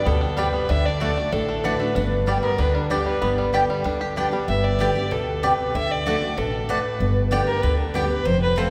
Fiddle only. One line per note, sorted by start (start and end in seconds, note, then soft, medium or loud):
0.07 0.41 A4 medium
0.39 0.72 B4 medium
0.70 0.88 E5 loud
0.86 1.34 D5 medium
1.32 1.66 A4 medium
1.65 2.12 B4 medium
2.43 2.62 A#4 medium
2.60 2.75 B4 medium
2.76 2.93 D4 medium
2.92 3.10 G4 medium
3.08 3.23 B4 medium
4.49 4.66 E5 medium
4.65 5.14 D5 medium
5.12 5.45 A4 medium
5.44 5.77 B4 medium
5.75 5.93 E5 loud
5.91 6.40 D5 medium
6.38 6.71 A4 medium
6.70 7.17 B4 medium
7.47 7.64 A#4 medium
7.62 7.78 B4 medium
7.79 7.97 D4 soft
7.95 8.11 G4 medium
8.10 8.27 B4 loud
8.26 8.41 C5 loud
8.42 8.59 B4 medium
8.57 8.70 A4 medium